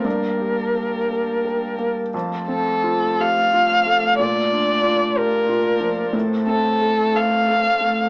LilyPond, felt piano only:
\new Staff \with { instrumentName = "Felt piano" } { \time 6/8 \key f \major \tempo 4. = 59 << { d''2~ d''8 r8 | r2. | r2. | r2. | } \\ { g,8 g'8 bes'8 bes'8 bes'8 bes8 | f,8 c'8 f'8 g'8 f'8 a8 | bes,8 d'8 f'8 g'8 f'8 f8 | a,8 c'8 a'8 a'8 a'8 a8 | } >> }